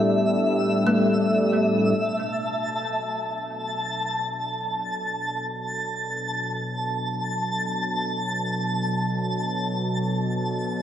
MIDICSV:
0, 0, Header, 1, 4, 480
1, 0, Start_track
1, 0, Key_signature, 2, "minor"
1, 0, Tempo, 500000
1, 10388, End_track
2, 0, Start_track
2, 0, Title_t, "Synth texture"
2, 0, Program_c, 0, 99
2, 0, Note_on_c, 0, 76, 77
2, 1887, Note_on_c, 0, 81, 74
2, 1907, Note_off_c, 0, 76, 0
2, 10388, Note_off_c, 0, 81, 0
2, 10388, End_track
3, 0, Start_track
3, 0, Title_t, "Kalimba"
3, 0, Program_c, 1, 108
3, 0, Note_on_c, 1, 91, 80
3, 832, Note_on_c, 1, 57, 54
3, 1572, Note_off_c, 1, 91, 0
3, 4915, Note_off_c, 1, 57, 0
3, 10388, End_track
4, 0, Start_track
4, 0, Title_t, "Analog synth pad"
4, 0, Program_c, 2, 89
4, 0, Note_on_c, 2, 45, 79
4, 0, Note_on_c, 2, 55, 93
4, 0, Note_on_c, 2, 59, 74
4, 0, Note_on_c, 2, 62, 62
4, 0, Note_on_c, 2, 69, 58
4, 1896, Note_off_c, 2, 55, 0
4, 1900, Note_off_c, 2, 45, 0
4, 1904, Note_on_c, 2, 47, 73
4, 2234, Note_on_c, 2, 54, 72
4, 4165, Note_off_c, 2, 59, 0
4, 10388, Note_off_c, 2, 47, 0
4, 10388, Note_off_c, 2, 54, 0
4, 10388, Note_off_c, 2, 62, 0
4, 10388, Note_off_c, 2, 69, 0
4, 10388, End_track
0, 0, End_of_file